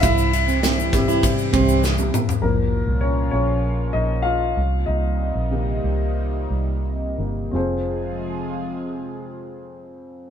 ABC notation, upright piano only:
X:1
M:4/4
L:1/8
Q:1/4=95
K:Fm
V:1 name="Upright piano"
[=E=e]6 z2 | B2 [Dd] [Dd]2 [Ee] [Ff]2 | [Ee]6 z2 | [CFAc]8 |]
V:2 name="Upright piano" clef=bass
z3 [G,C=E]3 z2 | [B,,F,B,]3 [D,F,B,] z4 | z2 [E,G,B,]3 z2 [E,G,B,] | F,,8 |]